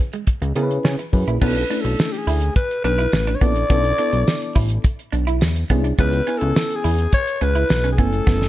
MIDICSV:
0, 0, Header, 1, 7, 480
1, 0, Start_track
1, 0, Tempo, 571429
1, 1189, Time_signature, 4, 2, 24, 8
1, 7128, End_track
2, 0, Start_track
2, 0, Title_t, "Alto saxophone"
2, 0, Program_c, 0, 65
2, 1197, Note_on_c, 0, 71, 88
2, 1519, Note_on_c, 0, 69, 85
2, 1532, Note_off_c, 0, 71, 0
2, 1781, Note_on_c, 0, 67, 70
2, 1794, Note_off_c, 0, 69, 0
2, 1829, Note_on_c, 0, 68, 84
2, 1842, Note_off_c, 0, 67, 0
2, 2146, Note_off_c, 0, 68, 0
2, 2151, Note_on_c, 0, 71, 91
2, 2373, Note_off_c, 0, 71, 0
2, 2391, Note_on_c, 0, 71, 106
2, 2818, Note_on_c, 0, 73, 74
2, 2831, Note_off_c, 0, 71, 0
2, 2871, Note_on_c, 0, 74, 118
2, 2883, Note_off_c, 0, 73, 0
2, 3830, Note_off_c, 0, 74, 0
2, 5036, Note_on_c, 0, 71, 103
2, 5357, Note_on_c, 0, 69, 100
2, 5370, Note_off_c, 0, 71, 0
2, 5675, Note_on_c, 0, 68, 96
2, 5688, Note_off_c, 0, 69, 0
2, 5992, Note_off_c, 0, 68, 0
2, 5997, Note_on_c, 0, 73, 111
2, 6237, Note_on_c, 0, 71, 102
2, 6250, Note_off_c, 0, 73, 0
2, 6650, Note_off_c, 0, 71, 0
2, 6655, Note_on_c, 0, 68, 68
2, 6714, Note_on_c, 0, 69, 96
2, 6726, Note_off_c, 0, 68, 0
2, 7128, Note_off_c, 0, 69, 0
2, 7128, End_track
3, 0, Start_track
3, 0, Title_t, "FM electric piano"
3, 0, Program_c, 1, 5
3, 465, Note_on_c, 1, 61, 81
3, 469, Note_on_c, 1, 64, 71
3, 470, Note_on_c, 1, 68, 73
3, 473, Note_on_c, 1, 70, 77
3, 526, Note_off_c, 1, 70, 0
3, 527, Note_on_c, 1, 71, 90
3, 843, Note_off_c, 1, 61, 0
3, 845, Note_off_c, 1, 64, 0
3, 846, Note_off_c, 1, 68, 0
3, 874, Note_off_c, 1, 71, 0
3, 946, Note_on_c, 1, 61, 64
3, 949, Note_on_c, 1, 64, 59
3, 952, Note_on_c, 1, 68, 59
3, 953, Note_on_c, 1, 71, 81
3, 1136, Note_off_c, 1, 61, 0
3, 1137, Note_off_c, 1, 64, 0
3, 1139, Note_off_c, 1, 68, 0
3, 1139, Note_off_c, 1, 71, 0
3, 1188, Note_on_c, 1, 61, 81
3, 1190, Note_on_c, 1, 62, 73
3, 1191, Note_on_c, 1, 64, 75
3, 1196, Note_on_c, 1, 69, 88
3, 1376, Note_off_c, 1, 61, 0
3, 1378, Note_off_c, 1, 62, 0
3, 1378, Note_off_c, 1, 64, 0
3, 1381, Note_off_c, 1, 69, 0
3, 1427, Note_on_c, 1, 61, 68
3, 1429, Note_on_c, 1, 62, 66
3, 1430, Note_on_c, 1, 64, 63
3, 1433, Note_on_c, 1, 57, 72
3, 2180, Note_off_c, 1, 61, 0
3, 2181, Note_off_c, 1, 62, 0
3, 2182, Note_off_c, 1, 64, 0
3, 2184, Note_off_c, 1, 57, 0
3, 2868, Note_on_c, 1, 61, 62
3, 2870, Note_on_c, 1, 62, 60
3, 2872, Note_on_c, 1, 64, 66
3, 2875, Note_on_c, 1, 69, 72
3, 3057, Note_off_c, 1, 61, 0
3, 3058, Note_off_c, 1, 62, 0
3, 3059, Note_off_c, 1, 64, 0
3, 3060, Note_off_c, 1, 69, 0
3, 3103, Note_on_c, 1, 61, 86
3, 3107, Note_on_c, 1, 62, 71
3, 3108, Note_on_c, 1, 64, 74
3, 3112, Note_on_c, 1, 69, 88
3, 3294, Note_off_c, 1, 61, 0
3, 3296, Note_off_c, 1, 62, 0
3, 3296, Note_off_c, 1, 64, 0
3, 3299, Note_off_c, 1, 69, 0
3, 3345, Note_on_c, 1, 59, 66
3, 3347, Note_on_c, 1, 62, 62
3, 3348, Note_on_c, 1, 64, 67
3, 3350, Note_on_c, 1, 69, 80
3, 4099, Note_off_c, 1, 59, 0
3, 4100, Note_off_c, 1, 62, 0
3, 4101, Note_off_c, 1, 64, 0
3, 4102, Note_off_c, 1, 69, 0
3, 4788, Note_on_c, 1, 61, 75
3, 4792, Note_on_c, 1, 62, 70
3, 4792, Note_on_c, 1, 64, 76
3, 4796, Note_on_c, 1, 68, 84
3, 4977, Note_off_c, 1, 61, 0
3, 4978, Note_off_c, 1, 62, 0
3, 4979, Note_off_c, 1, 64, 0
3, 4981, Note_off_c, 1, 68, 0
3, 5028, Note_on_c, 1, 59, 82
3, 5030, Note_on_c, 1, 61, 77
3, 5033, Note_on_c, 1, 64, 78
3, 5036, Note_on_c, 1, 68, 84
3, 5217, Note_off_c, 1, 59, 0
3, 5218, Note_off_c, 1, 61, 0
3, 5219, Note_off_c, 1, 64, 0
3, 5220, Note_off_c, 1, 68, 0
3, 5269, Note_on_c, 1, 59, 66
3, 5270, Note_on_c, 1, 61, 67
3, 5273, Note_on_c, 1, 64, 65
3, 5274, Note_on_c, 1, 80, 79
3, 6021, Note_off_c, 1, 59, 0
3, 6022, Note_off_c, 1, 61, 0
3, 6023, Note_off_c, 1, 64, 0
3, 6024, Note_off_c, 1, 80, 0
3, 6706, Note_on_c, 1, 57, 69
3, 6708, Note_on_c, 1, 61, 70
3, 6712, Note_on_c, 1, 64, 67
3, 6713, Note_on_c, 1, 80, 87
3, 7092, Note_off_c, 1, 57, 0
3, 7093, Note_off_c, 1, 61, 0
3, 7095, Note_off_c, 1, 64, 0
3, 7095, Note_off_c, 1, 80, 0
3, 7128, End_track
4, 0, Start_track
4, 0, Title_t, "Clean electric guitar"
4, 0, Program_c, 2, 27
4, 113, Note_on_c, 2, 56, 65
4, 208, Note_off_c, 2, 56, 0
4, 352, Note_on_c, 2, 56, 61
4, 447, Note_off_c, 2, 56, 0
4, 474, Note_on_c, 2, 59, 68
4, 569, Note_off_c, 2, 59, 0
4, 712, Note_on_c, 2, 61, 75
4, 808, Note_off_c, 2, 61, 0
4, 1073, Note_on_c, 2, 64, 54
4, 1168, Note_off_c, 2, 64, 0
4, 1189, Note_on_c, 2, 59, 88
4, 1286, Note_off_c, 2, 59, 0
4, 1432, Note_on_c, 2, 62, 80
4, 1528, Note_off_c, 2, 62, 0
4, 1909, Note_on_c, 2, 64, 70
4, 2006, Note_off_c, 2, 64, 0
4, 2388, Note_on_c, 2, 62, 91
4, 2485, Note_off_c, 2, 62, 0
4, 2507, Note_on_c, 2, 64, 73
4, 2605, Note_off_c, 2, 64, 0
4, 2750, Note_on_c, 2, 62, 79
4, 2846, Note_off_c, 2, 62, 0
4, 2868, Note_on_c, 2, 59, 96
4, 2965, Note_off_c, 2, 59, 0
4, 3107, Note_on_c, 2, 59, 91
4, 3205, Note_off_c, 2, 59, 0
4, 3347, Note_on_c, 2, 62, 86
4, 3445, Note_off_c, 2, 62, 0
4, 3826, Note_on_c, 2, 64, 72
4, 3924, Note_off_c, 2, 64, 0
4, 4304, Note_on_c, 2, 62, 85
4, 4403, Note_off_c, 2, 62, 0
4, 4428, Note_on_c, 2, 64, 75
4, 4525, Note_off_c, 2, 64, 0
4, 4788, Note_on_c, 2, 59, 97
4, 4885, Note_off_c, 2, 59, 0
4, 4907, Note_on_c, 2, 62, 64
4, 5005, Note_off_c, 2, 62, 0
4, 5028, Note_on_c, 2, 59, 97
4, 5125, Note_off_c, 2, 59, 0
4, 5267, Note_on_c, 2, 61, 82
4, 5365, Note_off_c, 2, 61, 0
4, 5748, Note_on_c, 2, 64, 71
4, 5845, Note_off_c, 2, 64, 0
4, 6227, Note_on_c, 2, 61, 89
4, 6325, Note_off_c, 2, 61, 0
4, 6345, Note_on_c, 2, 64, 73
4, 6443, Note_off_c, 2, 64, 0
4, 6585, Note_on_c, 2, 61, 74
4, 6684, Note_off_c, 2, 61, 0
4, 6706, Note_on_c, 2, 59, 97
4, 6804, Note_off_c, 2, 59, 0
4, 6945, Note_on_c, 2, 59, 93
4, 7044, Note_off_c, 2, 59, 0
4, 7128, End_track
5, 0, Start_track
5, 0, Title_t, "Analog synth bass"
5, 0, Program_c, 3, 38
5, 349, Note_on_c, 3, 37, 93
5, 445, Note_off_c, 3, 37, 0
5, 470, Note_on_c, 3, 49, 94
5, 661, Note_off_c, 3, 49, 0
5, 710, Note_on_c, 3, 49, 93
5, 805, Note_off_c, 3, 49, 0
5, 951, Note_on_c, 3, 42, 80
5, 1046, Note_off_c, 3, 42, 0
5, 1071, Note_on_c, 3, 34, 82
5, 1166, Note_off_c, 3, 34, 0
5, 1191, Note_on_c, 3, 35, 113
5, 1382, Note_off_c, 3, 35, 0
5, 1548, Note_on_c, 3, 35, 81
5, 1644, Note_off_c, 3, 35, 0
5, 1908, Note_on_c, 3, 38, 96
5, 2100, Note_off_c, 3, 38, 0
5, 2388, Note_on_c, 3, 35, 90
5, 2580, Note_off_c, 3, 35, 0
5, 2629, Note_on_c, 3, 33, 99
5, 2820, Note_off_c, 3, 33, 0
5, 2868, Note_on_c, 3, 34, 82
5, 3060, Note_off_c, 3, 34, 0
5, 3110, Note_on_c, 3, 35, 102
5, 3301, Note_off_c, 3, 35, 0
5, 3469, Note_on_c, 3, 35, 80
5, 3565, Note_off_c, 3, 35, 0
5, 3830, Note_on_c, 3, 33, 96
5, 4021, Note_off_c, 3, 33, 0
5, 4310, Note_on_c, 3, 35, 84
5, 4550, Note_on_c, 3, 40, 102
5, 4562, Note_off_c, 3, 35, 0
5, 4741, Note_off_c, 3, 40, 0
5, 4789, Note_on_c, 3, 36, 94
5, 4980, Note_off_c, 3, 36, 0
5, 5029, Note_on_c, 3, 37, 113
5, 5220, Note_off_c, 3, 37, 0
5, 5391, Note_on_c, 3, 37, 90
5, 5486, Note_off_c, 3, 37, 0
5, 5751, Note_on_c, 3, 40, 86
5, 5942, Note_off_c, 3, 40, 0
5, 6230, Note_on_c, 3, 37, 102
5, 6421, Note_off_c, 3, 37, 0
5, 6470, Note_on_c, 3, 35, 101
5, 6708, Note_on_c, 3, 30, 100
5, 6720, Note_off_c, 3, 35, 0
5, 6900, Note_off_c, 3, 30, 0
5, 6949, Note_on_c, 3, 30, 112
5, 7128, Note_off_c, 3, 30, 0
5, 7128, End_track
6, 0, Start_track
6, 0, Title_t, "Muted clean electric guitar strokes"
6, 234, Note_on_c, 9, 29, 42
6, 318, Note_off_c, 9, 29, 0
6, 832, Note_on_c, 9, 29, 42
6, 916, Note_off_c, 9, 29, 0
6, 1552, Note_on_c, 9, 29, 43
6, 1636, Note_off_c, 9, 29, 0
6, 2149, Note_on_c, 9, 29, 45
6, 2233, Note_off_c, 9, 29, 0
6, 2630, Note_on_c, 9, 29, 42
6, 2714, Note_off_c, 9, 29, 0
6, 3467, Note_on_c, 9, 29, 47
6, 3551, Note_off_c, 9, 29, 0
6, 4066, Note_on_c, 9, 29, 47
6, 4150, Note_off_c, 9, 29, 0
6, 4546, Note_on_c, 9, 29, 45
6, 4630, Note_off_c, 9, 29, 0
6, 5388, Note_on_c, 9, 29, 48
6, 5472, Note_off_c, 9, 29, 0
6, 5987, Note_on_c, 9, 29, 48
6, 6071, Note_off_c, 9, 29, 0
6, 6467, Note_on_c, 9, 29, 44
6, 6551, Note_off_c, 9, 29, 0
6, 7128, End_track
7, 0, Start_track
7, 0, Title_t, "Drums"
7, 108, Note_on_c, 9, 42, 55
7, 192, Note_off_c, 9, 42, 0
7, 226, Note_on_c, 9, 42, 83
7, 230, Note_on_c, 9, 36, 97
7, 310, Note_off_c, 9, 42, 0
7, 314, Note_off_c, 9, 36, 0
7, 352, Note_on_c, 9, 42, 50
7, 436, Note_off_c, 9, 42, 0
7, 466, Note_on_c, 9, 42, 66
7, 550, Note_off_c, 9, 42, 0
7, 592, Note_on_c, 9, 42, 45
7, 676, Note_off_c, 9, 42, 0
7, 713, Note_on_c, 9, 38, 92
7, 797, Note_off_c, 9, 38, 0
7, 831, Note_on_c, 9, 42, 54
7, 915, Note_off_c, 9, 42, 0
7, 950, Note_on_c, 9, 36, 80
7, 950, Note_on_c, 9, 46, 61
7, 1034, Note_off_c, 9, 36, 0
7, 1034, Note_off_c, 9, 46, 0
7, 1072, Note_on_c, 9, 42, 56
7, 1156, Note_off_c, 9, 42, 0
7, 1190, Note_on_c, 9, 36, 113
7, 1191, Note_on_c, 9, 49, 99
7, 1274, Note_off_c, 9, 36, 0
7, 1275, Note_off_c, 9, 49, 0
7, 1312, Note_on_c, 9, 42, 50
7, 1396, Note_off_c, 9, 42, 0
7, 1435, Note_on_c, 9, 42, 78
7, 1519, Note_off_c, 9, 42, 0
7, 1550, Note_on_c, 9, 42, 54
7, 1634, Note_off_c, 9, 42, 0
7, 1672, Note_on_c, 9, 54, 86
7, 1678, Note_on_c, 9, 38, 127
7, 1756, Note_off_c, 9, 54, 0
7, 1762, Note_off_c, 9, 38, 0
7, 1796, Note_on_c, 9, 42, 54
7, 1880, Note_off_c, 9, 42, 0
7, 1909, Note_on_c, 9, 46, 80
7, 1993, Note_off_c, 9, 46, 0
7, 2029, Note_on_c, 9, 42, 54
7, 2113, Note_off_c, 9, 42, 0
7, 2150, Note_on_c, 9, 42, 77
7, 2151, Note_on_c, 9, 36, 109
7, 2234, Note_off_c, 9, 42, 0
7, 2235, Note_off_c, 9, 36, 0
7, 2275, Note_on_c, 9, 42, 50
7, 2359, Note_off_c, 9, 42, 0
7, 2389, Note_on_c, 9, 42, 63
7, 2473, Note_off_c, 9, 42, 0
7, 2512, Note_on_c, 9, 42, 42
7, 2596, Note_off_c, 9, 42, 0
7, 2624, Note_on_c, 9, 54, 89
7, 2632, Note_on_c, 9, 38, 108
7, 2708, Note_off_c, 9, 54, 0
7, 2716, Note_off_c, 9, 38, 0
7, 2748, Note_on_c, 9, 42, 60
7, 2832, Note_off_c, 9, 42, 0
7, 2866, Note_on_c, 9, 42, 66
7, 2868, Note_on_c, 9, 36, 92
7, 2950, Note_off_c, 9, 42, 0
7, 2952, Note_off_c, 9, 36, 0
7, 2986, Note_on_c, 9, 42, 57
7, 3070, Note_off_c, 9, 42, 0
7, 3107, Note_on_c, 9, 42, 93
7, 3109, Note_on_c, 9, 36, 113
7, 3191, Note_off_c, 9, 42, 0
7, 3193, Note_off_c, 9, 36, 0
7, 3228, Note_on_c, 9, 42, 45
7, 3312, Note_off_c, 9, 42, 0
7, 3349, Note_on_c, 9, 42, 69
7, 3433, Note_off_c, 9, 42, 0
7, 3468, Note_on_c, 9, 42, 54
7, 3552, Note_off_c, 9, 42, 0
7, 3591, Note_on_c, 9, 54, 103
7, 3594, Note_on_c, 9, 38, 110
7, 3675, Note_off_c, 9, 54, 0
7, 3678, Note_off_c, 9, 38, 0
7, 3713, Note_on_c, 9, 42, 59
7, 3797, Note_off_c, 9, 42, 0
7, 3827, Note_on_c, 9, 46, 88
7, 3829, Note_on_c, 9, 36, 104
7, 3911, Note_off_c, 9, 46, 0
7, 3913, Note_off_c, 9, 36, 0
7, 3947, Note_on_c, 9, 42, 56
7, 4031, Note_off_c, 9, 42, 0
7, 4066, Note_on_c, 9, 42, 84
7, 4070, Note_on_c, 9, 36, 116
7, 4150, Note_off_c, 9, 42, 0
7, 4154, Note_off_c, 9, 36, 0
7, 4192, Note_on_c, 9, 42, 51
7, 4276, Note_off_c, 9, 42, 0
7, 4306, Note_on_c, 9, 42, 66
7, 4390, Note_off_c, 9, 42, 0
7, 4429, Note_on_c, 9, 42, 50
7, 4513, Note_off_c, 9, 42, 0
7, 4545, Note_on_c, 9, 54, 86
7, 4552, Note_on_c, 9, 38, 105
7, 4629, Note_off_c, 9, 54, 0
7, 4636, Note_off_c, 9, 38, 0
7, 4669, Note_on_c, 9, 42, 58
7, 4753, Note_off_c, 9, 42, 0
7, 4784, Note_on_c, 9, 42, 65
7, 4789, Note_on_c, 9, 36, 77
7, 4868, Note_off_c, 9, 42, 0
7, 4873, Note_off_c, 9, 36, 0
7, 4908, Note_on_c, 9, 42, 53
7, 4992, Note_off_c, 9, 42, 0
7, 5027, Note_on_c, 9, 42, 94
7, 5028, Note_on_c, 9, 36, 105
7, 5111, Note_off_c, 9, 42, 0
7, 5112, Note_off_c, 9, 36, 0
7, 5147, Note_on_c, 9, 42, 49
7, 5231, Note_off_c, 9, 42, 0
7, 5269, Note_on_c, 9, 42, 69
7, 5353, Note_off_c, 9, 42, 0
7, 5384, Note_on_c, 9, 42, 54
7, 5468, Note_off_c, 9, 42, 0
7, 5511, Note_on_c, 9, 54, 88
7, 5514, Note_on_c, 9, 38, 115
7, 5595, Note_off_c, 9, 54, 0
7, 5598, Note_off_c, 9, 38, 0
7, 5630, Note_on_c, 9, 42, 54
7, 5714, Note_off_c, 9, 42, 0
7, 5745, Note_on_c, 9, 46, 74
7, 5829, Note_off_c, 9, 46, 0
7, 5864, Note_on_c, 9, 42, 51
7, 5948, Note_off_c, 9, 42, 0
7, 5984, Note_on_c, 9, 42, 95
7, 5988, Note_on_c, 9, 36, 103
7, 6068, Note_off_c, 9, 42, 0
7, 6072, Note_off_c, 9, 36, 0
7, 6110, Note_on_c, 9, 42, 50
7, 6194, Note_off_c, 9, 42, 0
7, 6225, Note_on_c, 9, 42, 57
7, 6309, Note_off_c, 9, 42, 0
7, 6348, Note_on_c, 9, 42, 50
7, 6432, Note_off_c, 9, 42, 0
7, 6460, Note_on_c, 9, 54, 83
7, 6470, Note_on_c, 9, 38, 106
7, 6544, Note_off_c, 9, 54, 0
7, 6554, Note_off_c, 9, 38, 0
7, 6588, Note_on_c, 9, 42, 62
7, 6672, Note_off_c, 9, 42, 0
7, 6705, Note_on_c, 9, 42, 61
7, 6707, Note_on_c, 9, 36, 93
7, 6789, Note_off_c, 9, 42, 0
7, 6791, Note_off_c, 9, 36, 0
7, 6827, Note_on_c, 9, 42, 56
7, 6911, Note_off_c, 9, 42, 0
7, 6947, Note_on_c, 9, 36, 118
7, 6953, Note_on_c, 9, 38, 63
7, 7031, Note_off_c, 9, 36, 0
7, 7037, Note_off_c, 9, 38, 0
7, 7071, Note_on_c, 9, 38, 49
7, 7128, Note_off_c, 9, 38, 0
7, 7128, End_track
0, 0, End_of_file